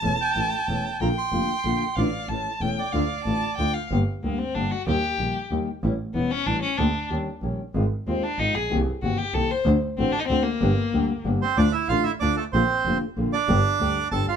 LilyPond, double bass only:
\new Staff \with { instrumentName = "Double bass" } { \clef bass \time 3/4 \key d \minor \tempo 4 = 188 e,,8 r8 a,,8 r8 e,,8 r8 | bes,,8 r8 f,,8 r8 bes,,8 r8 | a,,8 r8 a,,8 r8 e,,8 r8 | d,8 r8 a,,8 r8 d,8 r8 |
\key g \minor g,,8 r8 d,8 r8 g,,8 r8 | ees,8 r8 bes,,8 r8 ees,8 r8 | a,,8 r8 e,,8 r8 a,,8 r8 | d,8 r8 ees,8 r8 bes,,8 r8 |
aes,,8 r8 ees,8 r8 aes,,8 bes,,8 | c,8 r8 g,,8 r8 c,8 r8 | d,8 r8 a,,8 r8 d,8 r8 | g,,8 r8 d,8 r8 g,,8 r8 |
\key d \minor d,8 r8 a,,8 r8 d,8 r8 | bes,,8 r8 f,,8 r8 bes,,8 r8 | g,,8 r8 d,8 r8 g,,8 g,,8 | }